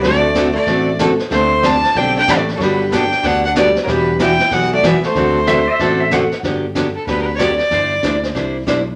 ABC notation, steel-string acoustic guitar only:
X:1
M:4/4
L:1/8
Q:"Swing" 1/4=188
K:G
V:1 name="Steel-string acoustic guitar"
[D,A,CFA] z [D,A,CFA] z [D,A,CFA] z [D,A,CFA] z | [D,G,CDG] z [D,G,CDG] z [D,G,CDG] z [D,G,CDG] z | [D,F,B,DG] z [D,F,B,DG] z [D,F,B,DG] z [D,F,B,DG] z | [E,G,B,F] z [E,G,B,F] z [E,G,B,F] z [E,G,B,F] z |
[D,A,CFA] z [D,A,CFA] z [D,A,CFA] z [D,A,CFA] z | [D,F,B,DG] z [D,F,B,DG] z [D,F,B,DG] z [D,F,B,DG] z | [G,DEc] z [G,DEc] z [G,DEc] z [G,DEc] z |]